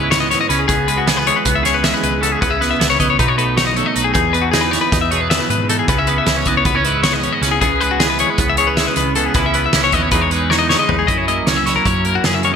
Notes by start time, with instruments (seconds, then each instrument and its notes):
Already playing: picked electric bass C#2, clean electric guitar G#2 E3 B3 C#4 E4 B4
0.11 clean electric guitar B3 C#5, snare, closed hi-hat
0.20 clean electric guitar D#5
0.31 clean electric guitar C#5, snare, closed hi-hat
0.41 clean electric guitar D#5
0.49 picked electric bass C#2, clean electric guitar C#3 C#4 B4, closed hi-hat
0.59 clean electric guitar G#4
0.68 picked electric bass C#2, clean electric guitar C#3 B3 G#4, kick, closed hi-hat
0.88 clean electric guitar G#3 B4, closed hi-hat
0.97 clean electric guitar F#4
1.07 clean electric guitar E3 B3 G#4, snare, closed hi-hat
1.17 clean electric guitar B4
1.27 clean electric guitar G#3 C#5, closed hi-hat
1.36 clean electric guitar B4
1.45 picked electric bass C#2, clean electric guitar B3, kick, closed hi-hat
1.55 clean electric guitar E5
1.62 clean electric guitar C#3 G#4 C#5, snare, closed hi-hat
1.74 clean electric guitar B4
1.84 clean electric guitar G#3 E5, snare, closed hi-hat
1.94 clean electric guitar B4
2.03 picked electric bass C#2, clean electric guitar B4, closed hi-hat
2.21 clean electric guitar C#3 B3 A4, closed hi-hat
2.32 clean electric guitar G#4
2.41 picked electric bass C#2, clean electric guitar C#3 B3 B4, kick, closed hi-hat
2.50 clean electric guitar C#4 E5
2.61 clean electric guitar B3 B4, snare, closed hi-hat
2.71 clean electric guitar E5
2.80 picked electric bass C#2, clean electric guitar E3 B3, snare, closed hi-hat
2.90 clean electric guitar C#4 C#5
3.00 picked electric bass C#2, clean electric guitar B3 D#5, kick, closed hi-hat
3.10 clean electric guitar C#5
3.19 picked electric bass B1, clean electric guitar B2 D#4 B4, kick, closed hi-hat
3.28 clean electric guitar C#5
3.38 clean electric guitar A3 B4, closed hi-hat
3.56 clean electric guitar F#3 D#4 C#5, snare, closed hi-hat
3.67 clean electric guitar D#5
3.76 clean electric guitar A3 C#5, closed hi-hat
3.86 clean electric guitar D#5
3.95 picked electric bass B1, clean electric guitar D#4 B4, closed hi-hat
4.04 clean electric guitar G#4
4.14 clean electric guitar E2 D#4 G#4, picked electric bass E2, kick, closed hi-hat
4.33 clean electric guitar B3 B4, closed hi-hat
4.42 clean electric guitar F#4
4.51 clean electric guitar E3 D#4 G#4, snare, closed hi-hat
4.61 clean electric guitar B4
4.71 clean electric guitar B3 C#5, snare, closed hi-hat
4.81 clean electric guitar B4
4.92 picked electric bass E2, clean electric guitar D#4, kick, snare, closed hi-hat
5.01 clean electric guitar E5
5.11 clean electric guitar B2 G#4 C#5, closed hi-hat
5.21 clean electric guitar B4
5.30 clean electric guitar B3 E5, snare, closed hi-hat
5.40 clean electric guitar B4
5.50 picked electric bass G#2, clean electric guitar B4, closed hi-hat
5.69 clean electric guitar E2 D#4 A4, closed hi-hat
5.79 clean electric guitar G#4
5.88 picked electric bass C#2, clean electric guitar C#3 B3 B4, kick, closed hi-hat
5.98 clean electric guitar C#4 E5
6.07 clean electric guitar B3 B4, closed hi-hat
6.18 clean electric guitar E5
6.26 picked electric bass C#2, clean electric guitar E3 C#4, snare, closed hi-hat
6.37 clean electric guitar C#5
6.45 picked electric bass C#2, clean electric guitar B3 D#5, kick, closed hi-hat
6.57 clean electric guitar C#5
6.65 picked electric bass C#2, clean electric guitar B3 B4, kick, closed hi-hat
6.75 clean electric guitar C#4 C#5
6.85 clean electric guitar G#2 E4 B4, closed hi-hat
7.03 clean electric guitar B3 C#5, snare, closed hi-hat
7.13 clean electric guitar D#5
7.23 clean electric guitar C#5, closed hi-hat
7.33 clean electric guitar D#5
7.41 picked electric bass C#2, clean electric guitar C#3 C#4 B4, snare, closed hi-hat
7.51 clean electric guitar G#4
7.61 picked electric bass C#2, clean electric guitar C#3 B3 G#4, kick, closed hi-hat
7.81 clean electric guitar G#3 B4, closed hi-hat
7.91 clean electric guitar F#4
8.00 clean electric guitar E3 B3 G#4, snare, closed hi-hat
8.10 clean electric guitar B4
8.19 clean electric guitar G#3 C#5, closed hi-hat
8.30 clean electric guitar B4
8.38 picked electric bass C#2, clean electric guitar B3, kick, closed hi-hat
8.49 clean electric guitar E5
8.57 clean electric guitar C#3 G#4 C#5, closed hi-hat
8.67 clean electric guitar B4
8.77 clean electric guitar G#3 E5, snare, closed hi-hat
8.87 clean electric guitar B4
8.96 picked electric bass C#2, clean electric guitar B4, closed hi-hat
9.15 clean electric guitar C#3 B3 A4, closed hi-hat
9.26 clean electric guitar G#4
9.34 picked electric bass C#2, clean electric guitar C#3 E3 B3 C#4 B4, kick, closed hi-hat
9.39 clean electric guitar E4
9.46 clean electric guitar E5
9.54 clean electric guitar B3 B4, closed hi-hat
9.66 clean electric guitar E5
9.73 picked electric bass C#2, clean electric guitar E3 C#4, snare, closed hi-hat
9.84 clean electric guitar C#5
9.92 picked electric bass D#2, clean electric guitar B3 D#5, kick, closed hi-hat
10.02 clean electric guitar C#5
10.11 picked electric bass E2, clean electric guitar E2 E3 G#3 D#4 G#4 B4, kick, closed hi-hat
10.21 clean electric guitar C#5
10.31 clean electric guitar G#3 B4, closed hi-hat
10.50 clean electric guitar E3 D#4 C#5, snare
10.59 clean electric guitar D#5
10.69 clean electric guitar G#3 C#5, snare
10.79 clean electric guitar D#5
10.88 picked electric bass E2, clean electric guitar D#4 B4, floor tom
10.99 clean electric guitar G#4
11.07 clean electric guitar F#2 E4 D#5, picked electric bass F#2, kick, closed hi-hat
11.18 clean electric guitar C#5
11.28 clean electric guitar A#3 D#5, closed hi-hat
11.46 picked electric bass C#2, clean electric guitar C#4 C#5, snare, closed hi-hat
11.56 clean electric guitar E5
11.66 clean electric guitar F#3 E4 C#5, snare, closed hi-hat
11.76 clean electric guitar A#4
11.86 picked electric bass F#2, clean electric guitar C#4 C#5, kick, closed hi-hat
12.05 clean electric guitar A#3 A#4, closed hi-hat
12.15 clean electric guitar F#4
12.24 picked electric bass F#2, clean electric guitar C#3 C#4 G#4, snare, closed hi-hat
12.34 clean electric guitar E5
12.43 clean electric guitar A#3 C#5, closed hi-hat